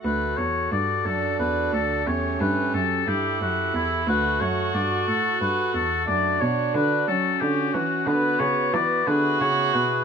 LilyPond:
<<
  \new Staff \with { instrumentName = "Oboe" } { \time 6/8 \key d \major \tempo 4. = 60 b'8 cis''8 d''8 a'8 b'8 a'8 | cis''8 b'8 a'8 g'8 fis'8 e'8 | b'8 cis''8 d''8 a'8 b'8 a'8 | d''8 cis''8 b'8 a'8 g'8 fis'8 |
\key b \dorian b'8 cis''8 d''8 b'8 cis''8 b'8 | }
  \new Staff \with { instrumentName = "Violin" } { \time 6/8 \key d \major r4. d'4. | cis'4. e'4. | fis'2. | d'4. cis'4. |
\key b \dorian b4. fis'4. | }
  \new Staff \with { instrumentName = "Pipe organ" } { \time 6/8 \key d \major <a fis' a'>2. | <a g' a'>2. | <a fis' a'>2. | <a fis'>2. |
\key b \dorian <b fis'>4. <b e' gis'>4. | }
  \new Staff \with { instrumentName = "Pipe organ" } { \clef bass \time 6/8 \key d \major d,8 e,8 g,8 fis,8 e,8 d,8 | e,8 g,8 fis,8 g,8 fis,8 e,8 | d,8 fis,8 g,8 a,8 g,8 e,8 | fis,8 b,8 d8 fis8 d8 e8 |
\key b \dorian d8 cis8 e8 d8 cis8 b,8 | }
  \new Staff \with { instrumentName = "Cello" } { \clef bass \time 6/8 \key d \major d,8 e,8 g,8 fis,8 e,8 d,8 | e,8 g,8 fis,8 g,8 fis,8 e,8 | d,8 fis,8 g,8 a,8 g,8 e,8 | fis,8 b,8 d8 fis8 d8 e8 |
\key b \dorian d8 cis8 e8 d8 cis8 b,8 | }
>>